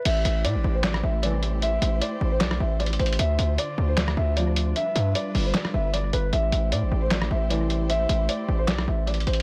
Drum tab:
CC |x-----------------------------------------------|------------------------------------------------|------------------------------------------------|------------------------------------------------|
HH |x-----x-----x-----------x-----------x-----x-----|x-----x-----x-----------x-----------x-x-x-x-x-x-|x-----x-----x-----------x-----------x-----x-----|x-----x-----x-----o-----x-----------x-----x-----|
CP |------------------------x-----------------------|------------------------x-----------------------|------------------------x-----------------------|------------------------x-----------------------|
SD |------------------------o--r--------------------|------------------------o--r--------------------|------------------------o--r--------------------|------------------------o--r--------------------|

CC |------------------------------------------------|------------------------------------------------|
HH |x-----x-----x-----------x-----------x-----x-----|x-----x-----x-----------x-----------x-x-x-x-x---|
CP |------------------------x-----------------------|------------------------x-----------------------|
SD |------------------------o--r--------------------|------------------------o--r--------------------|